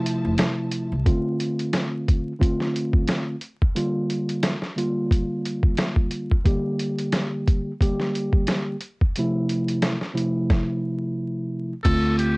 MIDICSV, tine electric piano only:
0, 0, Header, 1, 2, 480
1, 0, Start_track
1, 0, Key_signature, -1, "minor"
1, 0, Tempo, 674157
1, 755, Time_signature, 4, 2, 24, 8
1, 8810, End_track
2, 0, Start_track
2, 0, Title_t, "Tine electric piano"
2, 0, Program_c, 0, 4
2, 0, Note_on_c, 0, 48, 91
2, 0, Note_on_c, 0, 53, 86
2, 0, Note_on_c, 0, 57, 87
2, 0, Note_on_c, 0, 64, 108
2, 663, Note_off_c, 0, 48, 0
2, 665, Note_off_c, 0, 53, 0
2, 667, Note_off_c, 0, 57, 0
2, 669, Note_off_c, 0, 64, 0
2, 752, Note_on_c, 0, 50, 96
2, 756, Note_on_c, 0, 57, 79
2, 760, Note_on_c, 0, 60, 83
2, 764, Note_on_c, 0, 65, 94
2, 1647, Note_off_c, 0, 50, 0
2, 1650, Note_off_c, 0, 57, 0
2, 1651, Note_off_c, 0, 60, 0
2, 1654, Note_off_c, 0, 65, 0
2, 1701, Note_on_c, 0, 50, 89
2, 1706, Note_on_c, 0, 57, 76
2, 1710, Note_on_c, 0, 60, 84
2, 1714, Note_on_c, 0, 65, 100
2, 2379, Note_off_c, 0, 50, 0
2, 2381, Note_off_c, 0, 57, 0
2, 2383, Note_off_c, 0, 60, 0
2, 2385, Note_off_c, 0, 65, 0
2, 2669, Note_on_c, 0, 50, 97
2, 2673, Note_on_c, 0, 55, 88
2, 2678, Note_on_c, 0, 58, 77
2, 2682, Note_on_c, 0, 65, 96
2, 3234, Note_off_c, 0, 50, 0
2, 3236, Note_off_c, 0, 55, 0
2, 3238, Note_off_c, 0, 58, 0
2, 3240, Note_off_c, 0, 65, 0
2, 3388, Note_on_c, 0, 50, 82
2, 3392, Note_on_c, 0, 55, 78
2, 3396, Note_on_c, 0, 58, 83
2, 3401, Note_on_c, 0, 65, 102
2, 4509, Note_off_c, 0, 50, 0
2, 4511, Note_off_c, 0, 55, 0
2, 4513, Note_off_c, 0, 58, 0
2, 4515, Note_off_c, 0, 65, 0
2, 4588, Note_on_c, 0, 50, 96
2, 4593, Note_on_c, 0, 55, 80
2, 4597, Note_on_c, 0, 58, 82
2, 4601, Note_on_c, 0, 67, 93
2, 5486, Note_off_c, 0, 50, 0
2, 5488, Note_off_c, 0, 55, 0
2, 5490, Note_off_c, 0, 58, 0
2, 5492, Note_off_c, 0, 67, 0
2, 5557, Note_on_c, 0, 50, 81
2, 5561, Note_on_c, 0, 55, 88
2, 5566, Note_on_c, 0, 58, 81
2, 5570, Note_on_c, 0, 67, 104
2, 6226, Note_off_c, 0, 50, 0
2, 6228, Note_off_c, 0, 55, 0
2, 6231, Note_off_c, 0, 58, 0
2, 6233, Note_off_c, 0, 67, 0
2, 6532, Note_on_c, 0, 48, 90
2, 6536, Note_on_c, 0, 53, 82
2, 6540, Note_on_c, 0, 57, 89
2, 6544, Note_on_c, 0, 64, 100
2, 7085, Note_off_c, 0, 48, 0
2, 7087, Note_off_c, 0, 53, 0
2, 7089, Note_off_c, 0, 57, 0
2, 7091, Note_off_c, 0, 64, 0
2, 7216, Note_on_c, 0, 48, 85
2, 7220, Note_on_c, 0, 53, 84
2, 7225, Note_on_c, 0, 57, 80
2, 7229, Note_on_c, 0, 64, 98
2, 8343, Note_off_c, 0, 48, 0
2, 8345, Note_off_c, 0, 53, 0
2, 8347, Note_off_c, 0, 57, 0
2, 8349, Note_off_c, 0, 64, 0
2, 8433, Note_on_c, 0, 50, 101
2, 8436, Note_on_c, 0, 57, 82
2, 8441, Note_on_c, 0, 60, 87
2, 8445, Note_on_c, 0, 65, 100
2, 8810, Note_off_c, 0, 50, 0
2, 8810, Note_off_c, 0, 57, 0
2, 8810, Note_off_c, 0, 60, 0
2, 8810, Note_off_c, 0, 65, 0
2, 8810, End_track
0, 0, End_of_file